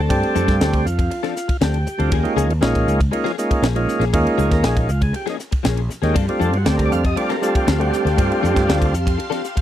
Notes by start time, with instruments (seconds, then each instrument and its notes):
Already playing: tonewheel organ A4
0.00 clean electric guitar C4 D4 A4
0.09 fretless electric bass G2, tonewheel organ G3 A3 C4 D4 G4, kick, ride
0.23 muted clean electric guitar stroke, ride
0.35 fretless electric bass F2, clean electric guitar F3 C4 D4 A4, hi-hat pedal
0.48 fretless electric bass G2, muted clean electric guitar stroke, kick, snare, ride
0.61 fretless electric bass D2, clean electric guitar F3 C4 D4 A4, tonewheel organ G4, snare, ride
0.73 muted clean electric guitar stroke, kick, ride
0.85 fretless electric bass F2, tonewheel organ F4, hi-hat pedal
0.99 muted clean electric guitar stroke, kick, ride
1.10 muted clean electric guitar stroke, ride
1.23 clean electric guitar F3 C4 D4 A4, snare, ride
1.36 muted clean electric guitar stroke, snare, hi-hat pedal
1.48 muted clean electric guitar stroke, kick, ride
1.61 fretless electric bass D2, clean electric guitar F3 C4 D4 A4, tonewheel organ G4, snare, ride
1.74 ride
1.87 muted clean electric guitar stroke, muted fretless electric bass stroke, hi-hat pedal
1.98 fretless electric bass D2, tonewheel organ G3 A3 C4 D4 F4, clean electric guitar C4 D4 A4, ride
2.12 fretless electric bass D#2, clean electric guitar F3 A#3 C#4 G#4, kick, ride
2.23 tonewheel organ G#3 A#3 C#4 D#4 F4, muted clean electric guitar stroke, ride
2.36 fretless electric bass C#2, clean electric guitar F3 A#3 C#4 G#4, hi-hat pedal
2.49 fretless electric bass D#2, muted clean electric guitar stroke, ride
2.61 fretless electric bass A#1, clean electric guitar F3 A#3 C#4 G#4, tonewheel organ G#3 A#3 C#4 D#4 F4, snare, ride
2.75 muted clean electric guitar stroke, kick, ride
2.87 fretless electric bass C#2, hi-hat pedal
2.99 muted clean electric guitar stroke, kick, ride
3.11 tonewheel organ G#3 A#3 C#4 D#4 F4, muted clean electric guitar stroke, ride
3.24 clean electric guitar F3 A#3 C#4 G#4, snare, ride
3.38 tonewheel organ G#3 A#3 C#4 D#4 F4, snare, hi-hat pedal
3.50 muted clean electric guitar stroke, kick, ride
3.62 fretless electric bass A#1, clean electric guitar F3 A#3 C#4 G#4, snare, ride
3.75 tonewheel organ G#3 A#3 C#4 D#4 F4, ride
3.88 muted fretless electric bass stroke, muted clean electric guitar stroke, snare, hi-hat pedal
4.00 fretless electric bass A#1, clean electric guitar A#3 C#4 G#4, snare, ride
4.13 fretless electric bass D#2, tonewheel organ G#3 A#3 C#4 D#4 F4, kick, ride
4.26 muted clean electric guitar stroke, ride
4.37 fretless electric bass C#2, clean electric guitar F3 A#3 C#4 G#4, hi-hat pedal
4.50 fretless electric bass D#2, tonewheel organ A#4, muted clean electric guitar stroke, kick, snare, ride
4.63 fretless electric bass A#1, clean electric guitar F3 A#3 C#4 G#4, tonewheel organ G#4, snare, ride
4.75 tonewheel organ C#4, muted clean electric guitar stroke, kick, ride
4.89 fretless electric bass C#2, tonewheel organ F4, hi-hat pedal
5.01 tonewheel organ G#4, muted clean electric guitar stroke, kick, ride
5.13 tonewheel organ G4, muted clean electric guitar stroke, ride
5.26 clean electric guitar F3 A#3 C#4 G#4, tonewheel organ D#4, snare, ride
5.39 muted clean electric guitar stroke, snare, hi-hat pedal
5.51 muted clean electric guitar stroke, kick, ride
5.63 fretless electric bass A#1, clean electric guitar F3 A#3 C#4 G#4, snare, ride
5.77 ride
5.89 muted clean electric guitar stroke, muted fretless electric bass stroke, snare, hi-hat pedal
6.02 fretless electric bass D#2, tonewheel organ G#3 A#3 C#4 D#4 G4, clean electric guitar A#3 C#4 G#4, snare, ride
6.14 fretless electric bass G2, clean electric guitar F3 C4 D4 A4, string machine G4 F5 A5 C6, kick, ride
6.27 tonewheel organ G3 A3 C4 D4 F4, muted clean electric guitar stroke, ride
6.39 fretless electric bass F2, clean electric guitar F3 C4 D4 A4, tonewheel organ A4, hi-hat pedal
6.52 fretless electric bass G2, tonewheel organ F#4, muted clean electric guitar stroke, ride
6.65 fretless electric bass D2, clean electric guitar F3 C4 D4 A4, tonewheel organ G3 A3 C4 D4 G4, snare, ride
6.69 tonewheel organ G4
6.77 tonewheel organ A#4, muted clean electric guitar stroke, kick, ride
6.86 tonewheel organ D5
6.92 fretless electric bass F2, tonewheel organ F5, hi-hat pedal
7.04 tonewheel organ D#5, muted clean electric guitar stroke, kick, ride
7.16 tonewheel organ G3 A3 C4 D4 F4 D5, muted clean electric guitar stroke, ride
7.29 clean electric guitar F3 C4 D4 A4, tonewheel organ A#4, snare, ride
7.42 tonewheel organ G3 A3 C4 D4 F4 A4, muted clean electric guitar stroke, snare, hi-hat pedal
7.55 tonewheel organ G4, muted clean electric guitar stroke, kick, ride
7.66 fretless electric bass D2, clean electric guitar F3 C4 D4 A4, tonewheel organ F4, snare, ride
7.79 tonewheel organ G3 A3 C4 D4 F#4 G4, ride
7.92 tonewheel organ G4, muted clean electric guitar stroke, snare, hi-hat pedal
8.05 fretless electric bass D2, clean electric guitar C4 D4 A4, tonewheel organ G4, snare, ride
8.16 fretless electric bass G2, tonewheel organ G3 A3 C4 D4 F4, kick, ride
8.31 muted clean electric guitar stroke, ride
8.42 fretless electric bass F2, clean electric guitar F3 C4 D4 A4, hi-hat pedal
8.55 fretless electric bass G2, muted clean electric guitar stroke, kick, snare, ride
8.67 fretless electric bass D2, clean electric guitar F3 C4 D4 A4, snare, ride
8.80 muted clean electric guitar stroke, kick, ride
8.93 fretless electric bass F2, hi-hat pedal
9.06 muted clean electric guitar stroke, kick, ride
9.18 muted clean electric guitar stroke, ride
9.30 clean electric guitar F3 C4 D4 A4, snare, ride
9.43 muted clean electric guitar stroke, snare, hi-hat pedal
9.56 muted clean electric guitar stroke, kick, ride